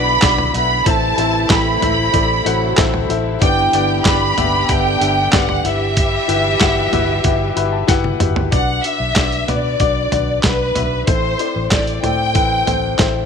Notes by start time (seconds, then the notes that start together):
Already playing: B1 B2 D3 B3 D4 E4 F#4 B4 D5 B5
0.21 B1 B3 D4 F#4 B4 D5, kick, snare, clap, closed hi-hat
0.38 floor tom
0.54 B1 B3 D4 F#4 B4 E5 B5, closed hi-hat
0.86 A1 A2 C3 E3 A3 C4 E4 A4 C5 E5 A5, kick, closed hi-hat
1.17 A1 C4 E4 A4 C5 E5, closed hi-hat
1.50 A1 C4 E4 A4 C5 G5 B5, kick, snare, clap, closed hi-hat
1.81 A1 C4 E4 A4 C5 E5, closed hi-hat, floor tom
2.13 A1 C4 E4 A4 C5 D5, kick, closed hi-hat
2.45 A1 F#3 C4 E4 F#4 A4 C5 F#5, closed hi-hat
2.77 A1 C4 E4 A4 C5 E5, kick, snare, clap, closed hi-hat
2.94 floor tom
3.09 A1 C4 E4 A4 C5 E5, closed hi-hat
3.41 G1 G2 D3 E3 B3 D4 E4 G4 B4 D5 G5, kick, closed hi-hat
3.73 G1 B3 D4 G4 B4 D5, closed hi-hat
4.05 G1 B3 D4 G4 B4 D5 B5, kick, snare, clap, closed hi-hat
4.37 G1 B3 D4 G4 B4 E5, closed hi-hat, floor tom
4.69 G1 D3 B3 D4 G4 B4 E5 G5, kick, closed hi-hat
5.00 G1 B3 D4 G4 B4 E5, closed hi-hat
5.32 G1 B3 D4 G4 B4 D5 F#5, kick, snare, clap, closed hi-hat
5.49 floor tom
5.64 G1 G2 E3 G3 E4 G4 B4 E5 F#5, closed hi-hat
5.97 kick, closed hi-hat
6.28 G1 E4 F#4 G4 B4 E5, closed hi-hat
6.60 G1 E4 F#4 G4 B4 F#5, kick, snare, clap, closed hi-hat
6.92 G1 E4 F#4 G4 B4 E5, closed hi-hat, floor tom
7.24 G1 E4 F#4 G4 B4 E5, kick, closed hi-hat
7.56 G1 E4 F#4 G4 B4 E5 B5, closed hi-hat
7.72 A5
7.88 G1 E4 F#4 G4 B4 F#5 G5, kick, snare, closed hi-hat
8.04 high tom
8.20 G1 E4 F#4 G4 B4 E5, closed hi-hat, mid tom
8.36 floor tom
8.51 B1 B2 D4 F#4 B4 D5 F#5, kick, closed hi-hat
8.83 D4 F#4 B4 E5, closed hi-hat
9.00 B1
9.16 B1 D4 F#4 B4 D5, kick, snare, clap, closed hi-hat
9.32 closed hi-hat
9.48 B2 D4 F#4 B4 D5, closed hi-hat, floor tom
9.80 B1 D4 F#4 B4 D5, kick, closed hi-hat
10.12 B1 D4 F#4 B4 D5, closed hi-hat, floor tom
10.43 B1 D4 F#4 B4 D5, kick, snare, clap, closed hi-hat
10.75 B1 D4 F#4 B4 E5, closed hi-hat, floor tom
11.07 A1 A2 C4 E4 A4 C5, kick, closed hi-hat
11.39 C4 E4 A4 D5, closed hi-hat
11.56 A1
11.71 A1 C4 E4 A4 C5 D5, kick, snare, clap, closed hi-hat
11.87 closed hi-hat
12.03 A2 C4 E4 A4 D5 G5, closed hi-hat, floor tom
12.34 A1 C4 E4 A4 B4, kick, closed hi-hat
12.66 A1 C4 E4 A4 C5, closed hi-hat, floor tom
12.98 A1 C4 E4 A4 C5 E5, kick, snare, clap, closed hi-hat